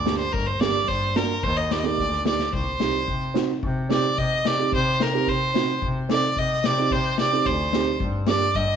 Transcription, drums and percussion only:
0.07 snare
0.34 kick
0.61 snare
0.89 kick
1.16 snare
1.43 kick
1.71 snare
1.98 kick
2.12 snare
2.26 snare
2.39 snare
2.53 kick
2.80 snare
3.08 kick
3.35 snare
3.63 kick
3.91 snare
4.18 kick
4.45 snare
4.72 kick
5.00 snare
5.27 kick
5.55 snare
5.82 kick
6.10 snare
6.37 kick
6.64 snare
6.91 kick
7.18 snare
7.46 kick
7.73 snare
8.00 kick
8.27 snare
8.55 kick

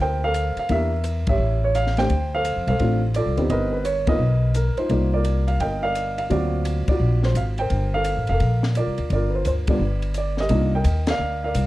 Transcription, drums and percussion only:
0.00 kick
0.34 hi-hat pedal, ride
0.57 ride
0.69 kick, ride
1.04 hi-hat pedal, ride
1.27 kick, ride
1.75 hi-hat pedal, ride
1.87 snare
1.97 snare, ride
2.10 kick, ride
2.45 hi-hat pedal, ride
2.67 ride
2.79 kick, ride
3.14 hi-hat pedal, ride
3.37 ride
3.50 kick, ride
3.85 hi-hat pedal, ride
4.07 kick, ride
4.54 hi-hat pedal, ride
4.77 ride
4.89 kick, ride
5.25 hi-hat pedal, ride
5.48 ride
5.60 kick, ride
5.95 hi-hat pedal, ride
6.18 ride
6.30 kick, ride
6.65 hi-hat pedal, ride
6.88 kick, ride
7.23 snare
7.35 hi-hat pedal, ride
7.58 ride
7.70 kick, ride
8.04 hi-hat pedal, ride
8.27 ride
8.40 kick, ride
8.63 snare
8.75 hi-hat pedal, ride
8.98 ride
9.10 kick, ride
9.45 hi-hat pedal, ride
9.67 kick, ride
10.02 ride
10.14 hi-hat pedal, ride
10.37 snare
10.49 kick, ride
10.84 kick, hi-hat pedal, ride
11.07 snare, ride
11.55 kick, hi-hat pedal, ride

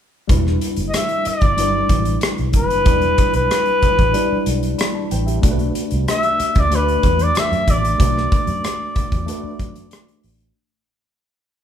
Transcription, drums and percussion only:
0.29 kick, closed hi-hat
0.47 cross-stick
0.61 closed hi-hat
0.76 closed hi-hat
0.94 cross-stick, closed hi-hat
1.09 closed hi-hat
1.25 closed hi-hat
1.41 kick, closed hi-hat
1.58 closed hi-hat
1.89 kick, closed hi-hat
2.05 closed hi-hat
2.21 cross-stick, closed hi-hat
2.38 closed hi-hat
2.53 kick, closed hi-hat
2.70 closed hi-hat
2.86 kick, closed hi-hat
3.01 closed hi-hat
3.18 kick, closed hi-hat
3.34 closed hi-hat
3.51 cross-stick, closed hi-hat
3.66 closed hi-hat
3.82 kick, closed hi-hat
3.98 kick, closed hi-hat
4.14 closed hi-hat
4.46 closed hi-hat
4.63 closed hi-hat
4.79 cross-stick, closed hi-hat
5.11 closed hi-hat
5.28 closed hi-hat
5.43 kick, closed hi-hat
5.59 closed hi-hat
5.75 closed hi-hat
5.91 closed hi-hat
6.08 cross-stick, closed hi-hat
6.23 closed hi-hat
6.40 closed hi-hat
6.55 kick, closed hi-hat
6.72 closed hi-hat
6.88 closed hi-hat
7.03 kick, closed hi-hat
7.19 closed hi-hat
7.35 cross-stick, closed hi-hat
7.53 closed hi-hat
7.68 kick, closed hi-hat
7.85 closed hi-hat
8.00 kick, closed hi-hat
8.18 cross-stick
8.32 kick, closed hi-hat
8.47 closed hi-hat
8.64 cross-stick, closed hi-hat
8.96 kick, closed hi-hat
9.12 kick, closed hi-hat
9.28 closed hi-hat
9.59 kick, closed hi-hat
9.75 closed hi-hat
9.91 cross-stick, closed hi-hat
10.08 closed hi-hat
10.23 open hi-hat
10.40 closed hi-hat

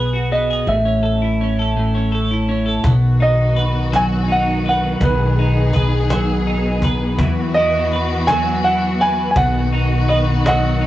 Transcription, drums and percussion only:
2.84 cajon bass
3.20 cajon slap
3.56 cajon slap
3.93 cajon slap
4.28 cajon slap
4.64 cajon slap
5.01 cajon bass
5.37 cajon slap
5.73 cajon bass
6.10 cajon slap
6.46 cajon slap
6.82 cajon bass
7.19 cajon bass
7.55 cajon slap
7.91 cajon slap
8.28 cajon slap
8.64 cajon slap
9.00 cajon slap
9.36 cajon bass
9.73 cajon slap
10.09 cajon slap
10.46 cajon slap
10.81 cajon slap

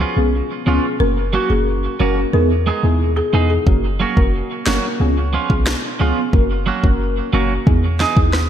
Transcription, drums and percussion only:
3.67 kick
4.17 kick
4.66 finger snap, snare
5.50 kick
5.67 finger snap, cross-stick, snare
6.33 kick
6.84 kick
7.67 kick
8.00 snare
8.17 kick
8.33 cross-stick, snare

